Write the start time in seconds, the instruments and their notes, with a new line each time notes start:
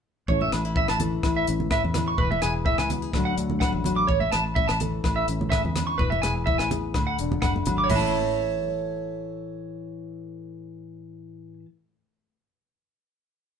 0.28 fingered electric bass A1, nylon-string guitar A2 E3 C#4 E4 A4, clean electric guitar C#5, kick
0.41 clean electric guitar E5, high conga
0.52 fingered electric bass A1, nylon-string guitar C#4, cross-stick, closed hi-hat, low agogo
0.65 nylon-string guitar E4
0.76 nylon-string guitar C#4, clean electric guitar E5, kick
0.88 fingered electric bass A1, clean electric guitar A5, cross-stick, low agogo
0.99 nylon-string guitar E3 A4, closed hi-hat, low conga
1.23 fingered electric bass A1, nylon-string guitar E4, kick, cross-stick, low agogo
1.37 clean electric guitar E5
1.47 fingered electric bass A1, nylon-string guitar C#4, closed hi-hat
1.60 high conga, low conga
1.70 nylon-string guitar A2, clean electric guitar E5, kick, cross-stick, low agogo
1.84 fingered electric bass E2, high conga
1.94 nylon-string guitar E4, cross-stick, closed hi-hat, low conga, low agogo
2.08 clean electric guitar C#6
2.18 fingered electric bass E1, nylon-string guitar E3, clean electric guitar B4, kick
2.31 clean electric guitar E5, high conga
2.42 fingered electric bass E1, nylon-string guitar G#4, clean electric guitar G#5, cross-stick, closed hi-hat, low agogo
2.66 nylon-string guitar E4, clean electric guitar E5, kick
2.78 fingered electric bass C#2, clean electric guitar G#5, cross-stick, low agogo
2.90 nylon-string guitar B3 F#4, closed hi-hat, low conga
3.02 nylon-string guitar G#4
3.13 fingered electric bass D2, nylon-string guitar D3 F#3 A3 D4 F#4, kick, cross-stick, low agogo
3.25 clean electric guitar F#5
3.37 fingered electric bass D2, nylon-string guitar D4, closed hi-hat
3.50 high conga, low conga
3.60 nylon-string guitar A3, clean electric guitar F#5, kick, cross-stick, low agogo
3.73 fingered electric bass A1, high conga
3.84 nylon-string guitar F#3 F#4, closed hi-hat, low conga, low agogo
3.96 clean electric guitar D6
4.07 fingered electric bass A1, nylon-string guitar A2, clean electric guitar C#5, kick
4.20 clean electric guitar E5, high conga
4.32 fingered electric bass A1, clean electric guitar A5, muted nylon-string guitar stroke, cross-stick, closed hi-hat, low agogo
4.55 nylon-string guitar C#4, clean electric guitar E5, kick
4.68 fingered electric bass A1, clean electric guitar A5, cross-stick, low agogo
4.80 nylon-string guitar E3 A4, closed hi-hat, low conga
5.04 fingered electric bass A1, nylon-string guitar E4, kick, cross-stick, low agogo
5.16 clean electric guitar E5
5.28 fingered electric bass A1, nylon-string guitar C#4, closed hi-hat
5.41 high conga, low conga
5.50 nylon-string guitar C#3, clean electric guitar E5, kick, cross-stick, low agogo
5.64 fingered electric bass E2, high conga
5.76 nylon-string guitar D3, cross-stick, closed hi-hat, low conga, low agogo
5.87 clean electric guitar C#6
5.98 fingered electric bass E1, nylon-string guitar E3, clean electric guitar B4, kick
6.10 clean electric guitar E5, high conga
6.22 fingered electric bass E1, nylon-string guitar G#4, clean electric guitar G#5, cross-stick, closed hi-hat, high conga, low agogo
6.46 nylon-string guitar E4, clean electric guitar E5, kick
6.58 fingered electric bass A1, clean electric guitar G#5, cross-stick, low agogo
6.71 nylon-string guitar B3 G#4, closed hi-hat, low conga
6.94 fingered electric bass D2, nylon-string guitar D3, kick, cross-stick, low agogo
7.07 clean electric guitar F#5
7.18 fingered electric bass E1, nylon-string guitar D4, closed hi-hat
7.32 high conga, low conga
7.42 fingered electric bass F#1, nylon-string guitar A3, clean electric guitar F#5, kick, cross-stick, low agogo
7.56 high conga
7.66 fingered electric bass G#1, nylon-string guitar F#3 F#4, closed hi-hat, low conga, low agogo
7.78 clean electric guitar D6
7.84 clean electric guitar C#5
7.90 fingered electric bass A1, nylon-string guitar A2 E3, clean electric guitar E5, kick, floor tom, open hi-hat, high conga, low agogo
7.94 nylon-string guitar C#4 E4, clean electric guitar A5
7.98 nylon-string guitar A4
8.62 nylon-string guitar A4
8.68 nylon-string guitar C#5